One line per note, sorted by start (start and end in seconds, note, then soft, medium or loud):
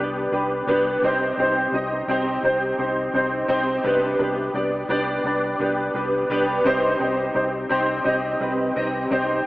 0.00 0.26 C2 medium
0.00 1.04 C3 medium
0.00 0.32 B3 medium
0.00 0.32 D4 medium
0.00 0.33 G4 medium
0.00 0.33 B4 loud
0.00 1.04 D5 medium
0.32 0.61 C2 medium
0.32 0.57 B3 medium
0.32 0.57 D4 medium
0.32 0.57 G4 medium
0.32 0.57 B4 medium
0.67 0.96 C2 medium
0.67 0.92 B3 medium
0.67 0.92 D4 medium
0.67 0.92 G4 medium
0.67 0.92 B4 medium
1.02 1.31 C2 medium
1.02 2.05 C3 medium
1.02 1.28 C4 medium
1.02 1.28 D#4 medium
1.02 1.28 G4 medium
1.02 1.28 C5 medium
1.37 1.66 C2 medium
1.37 1.63 C4 medium
1.37 1.63 D#4 medium
1.37 1.63 G4 medium
1.37 1.63 C5 medium
1.72 2.01 C2 medium
1.72 1.98 C4 medium
1.72 1.98 D#4 medium
1.72 1.98 G4 medium
1.72 1.98 D#5 medium
2.08 2.37 C2 medium
2.08 2.33 C4 medium
2.08 2.33 D#4 medium
2.08 2.33 G4 medium
2.08 2.34 C5 medium
2.43 2.72 C2 medium
2.43 2.68 C4 medium
2.43 2.68 D#4 medium
2.43 2.68 G4 medium
2.43 2.69 C5 medium
2.78 3.07 C2 medium
2.78 3.03 C4 medium
2.78 3.03 D#4 medium
2.78 3.03 G4 medium
2.78 3.03 C5 medium
3.14 3.42 C2 medium
3.14 3.38 C4 medium
3.14 3.38 D#4 medium
3.14 3.39 G4 medium
3.14 3.39 C5 medium
3.48 3.78 C2 medium
3.48 3.73 C4 medium
3.48 3.73 D#4 medium
3.48 3.73 G4 medium
3.48 3.73 C5 loud
3.83 4.13 C2 medium
3.83 4.86 C3 medium
3.83 4.08 B3 medium
3.83 4.09 D4 medium
3.83 4.09 G4 medium
3.83 4.09 B4 medium
4.19 4.48 C2 medium
4.19 4.43 B3 medium
4.19 4.44 D4 medium
4.19 4.44 G4 medium
4.19 4.44 B4 medium
4.54 4.83 C2 medium
4.54 4.79 B3 medium
4.54 4.79 D4 medium
4.54 4.79 G4 medium
4.54 4.79 D5 medium
4.89 5.18 C2 medium
4.89 5.14 B3 medium
4.89 5.14 D4 medium
4.89 5.14 G4 medium
4.89 5.14 D5 medium
5.24 5.53 C2 medium
5.24 5.50 B3 medium
5.24 5.50 D4 medium
5.24 5.50 G4 medium
5.24 5.50 D5 medium
5.59 5.88 C2 medium
5.59 5.84 B3 medium
5.59 5.84 D4 medium
5.59 5.84 G4 medium
5.59 5.85 B4 medium
5.94 6.23 C2 medium
5.94 6.19 B3 medium
5.94 6.20 D4 medium
5.94 6.20 G4 medium
5.94 6.20 B4 medium
6.30 6.59 C2 medium
6.30 6.55 B3 medium
6.30 6.55 D4 medium
6.30 6.55 G4 medium
6.30 6.55 B4 loud
6.65 6.94 C2 medium
6.65 7.67 C3 medium
6.65 6.90 C4 medium
6.65 6.90 D#4 medium
6.65 6.90 G4 medium
6.65 6.90 C5 loud
6.99 7.29 C2 medium
6.99 7.25 C4 medium
6.99 7.25 D#4 medium
6.99 7.25 G4 medium
6.99 7.25 C5 medium
7.34 7.64 C2 medium
7.34 7.60 C4 medium
7.34 7.60 D#4 medium
7.34 7.60 G4 medium
7.34 7.60 C5 medium
7.69 8.00 C2 medium
7.69 7.95 C4 medium
7.69 7.95 D#4 medium
7.69 7.95 G4 medium
7.69 7.95 C5 loud
8.04 8.34 C2 medium
8.04 8.30 C4 medium
8.04 8.30 D#4 medium
8.04 8.30 G4 medium
8.04 8.30 D#5 medium
8.40 8.70 C2 medium
8.40 8.65 C4 medium
8.40 8.66 D#4 medium
8.40 8.66 G4 medium
8.40 8.66 B4 medium
8.76 9.05 C2 medium
8.76 9.01 C4 medium
8.76 9.01 D#4 medium
8.76 9.01 G4 medium
8.76 9.01 D#5 medium
9.11 9.40 C2 medium
9.11 9.36 C4 medium
9.11 9.36 D#4 medium
9.11 9.36 G4 medium
9.11 9.36 C5 loud